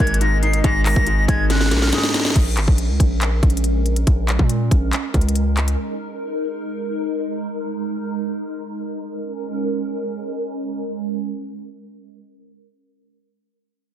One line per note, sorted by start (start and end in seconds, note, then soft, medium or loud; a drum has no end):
0.00 0.62 G#1 loud
0.00 0.21 G#2 loud
0.00 0.21 D#3 medium
0.00 0.64 G#3 medium
0.00 2.32 G#3 medium
0.00 1.07 A#3 medium
0.00 2.32 D#4 medium
0.00 2.32 A#4 medium
0.00 0.20 G#6 medium
0.07 closed hi-hat medium
0.14 closed hi-hat medium
0.21 0.63 G#2 medium
0.21 0.41 A#6 medium
0.21 closed hi-hat medium
0.43 1.50 D#4 medium
0.43 0.62 C7 medium
0.43 closed hi-hat soft
0.53 closed hi-hat medium
0.64 0.95 G#1 loud
0.64 1.05 G#2 loud
0.64 0.84 A#6 loud
0.64 kick loud
0.64 closed hi-hat medium
0.85 1.93 D#3 medium
0.85 1.26 A#6 loud
0.85 clap loud
0.85 open hi-hat medium
0.96 1.27 G#1 loud
0.96 kick loud
1.07 1.49 G#2 medium
1.07 closed hi-hat medium
1.28 1.73 G#1 loud
1.28 2.36 G#3 medium
1.28 1.48 G#6 medium
1.28 kick loud
1.28 closed hi-hat medium
1.50 1.91 G#2 medium
1.50 1.80 F#6 medium
1.50 snare medium
1.50 closed hi-hat medium
1.55 snare medium
1.61 snare medium
1.66 snare medium
1.71 1.92 A#1 loud
1.71 2.36 A#3 medium
1.71 snare medium
1.71 closed hi-hat medium
1.77 snare medium
1.82 1.92 F6 medium
1.82 snare medium
1.87 snare medium
1.92 2.36 G#2 medium
1.92 2.12 D#6 medium
1.92 snare medium
1.92 closed hi-hat medium
1.98 snare medium
2.03 snare loud
2.09 snare medium
2.14 2.36 D#4 medium
2.14 snare loud
2.14 closed hi-hat medium
2.20 snare loud
2.25 snare loud
2.30 snare loud
2.36 2.58 A#1 loud
2.36 9.17 G#3 medium
2.36 5.75 C#4 medium
2.36 9.17 A#4 medium
2.36 kick loud
2.36 closed hi-hat medium
2.36 crash medium
2.57 2.67 G#1 loud
2.57 clap medium
2.57 closed hi-hat medium
2.68 2.91 A#1 loud
2.68 kick medium
2.78 closed hi-hat medium
2.89 2.99 C#2 loud
3.00 3.41 A#1 loud
3.00 kick medium
3.00 closed hi-hat medium
3.21 clap loud
3.21 closed hi-hat medium
3.43 4.04 A#1 loud
3.43 kick loud
3.43 closed hi-hat soft
3.50 closed hi-hat medium
3.57 closed hi-hat medium
3.64 closed hi-hat medium
3.86 closed hi-hat soft
3.96 closed hi-hat medium
4.07 4.38 A#1 loud
4.07 kick loud
4.07 closed hi-hat medium
4.29 clap medium
4.29 closed hi-hat medium
4.39 4.70 A#2 loud
4.39 kick loud
4.50 closed hi-hat medium
4.71 4.92 A#1 loud
4.71 kick loud
4.71 closed hi-hat medium
4.93 clap loud
4.93 closed hi-hat medium
5.14 5.76 C#2 loud
5.14 kick medium
5.14 closed hi-hat soft
5.21 closed hi-hat medium
5.29 closed hi-hat medium
5.35 closed hi-hat medium
5.57 clap medium
5.57 closed hi-hat soft
5.68 closed hi-hat medium
5.78 9.18 D#4 medium
9.21 12.56 G#3 medium
9.21 12.56 C#4 medium
9.21 12.55 A#4 medium